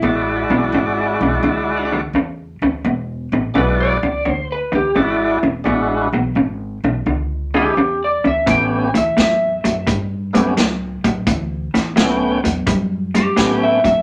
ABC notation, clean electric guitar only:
X:1
M:4/4
L:1/8
Q:"Swing" 1/4=86
K:Emix
V:1 name="Clean electric guitar" clef=bass
[E,,B,,] [E,,B,,] [E,,C,] [E,,C,] [E,,D,] [E,,D,] [E,,C,] [E,,C,] | [E,,B,,] [E,,B,,] [E,,C,] [E,,C,] [E,,D,] [E,,D,] [E,,C,] [E,,C,] | [E,,B,,] [E,,B,,] [E,,C,] [E,,C,] [E,,D,] [E,,D,] [E,,C,] [E,,C,] | [A,,E,] [A,,E,] [A,,F,] [A,,F,] [A,,=G,] [A,,G,] [A,,F,] [A,,F,] |
[A,,E,] [A,,E,] [A,,F,] [A,,F,] [A,,=G,] [A,,G,] [A,,F,] [A,,F,] |]